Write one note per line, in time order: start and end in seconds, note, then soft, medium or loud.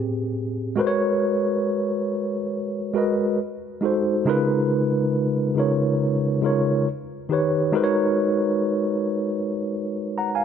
0.00 0.73 A2 medium
0.00 0.74 C4 medium
0.00 0.74 G4 soft
0.00 0.30 G#4 medium
0.76 2.34 G#3 loud
0.76 2.35 F#4 loud
0.76 2.35 A#4 medium
0.76 2.36 B4 medium
0.81 0.87 C5 medium
0.87 2.40 C#5 loud
2.94 3.38 G#3 medium
2.94 3.38 F#4 medium
2.94 3.39 A#4 medium
2.94 3.39 B4 medium
2.98 3.40 D#5 medium
3.81 4.21 G#3 medium
3.81 4.21 D#4 medium
3.81 4.22 F#4 medium
3.81 4.22 A4 medium
3.85 4.23 C5 medium
4.25 5.43 C#3 loud
4.25 5.44 G#3 loud
4.25 5.44 D#4 loud
4.25 5.45 F4 loud
4.25 5.45 A#4 loud
4.30 5.46 B4 loud
5.55 6.34 C#3 medium
5.55 6.35 G#3 medium
5.55 6.35 D#4 medium
5.55 6.35 F4 medium
5.55 6.36 A#4 medium
5.60 6.36 C#5 medium
6.41 6.85 C#3 medium
6.41 6.86 G#3 medium
6.41 6.86 D#4 medium
6.41 6.87 F4 medium
6.41 6.87 A#4 medium
6.46 6.88 C#5 medium
7.29 7.69 D#3 medium
7.29 7.69 D#4 medium
7.29 7.70 G4 medium
7.29 7.70 B4 medium
7.33 7.71 C#5 medium
7.72 9.30 G#3 loud
7.72 9.31 D#4 loud
7.72 9.31 F#4 loud
7.72 9.32 A#4 loud
7.72 9.32 B4 medium
7.77 7.83 C5 medium
7.84 9.36 C#5 loud
10.18 10.34 F#5 soft
10.18 10.33 A#5 medium
10.35 10.45 F5 medium
10.35 10.45 G#5 medium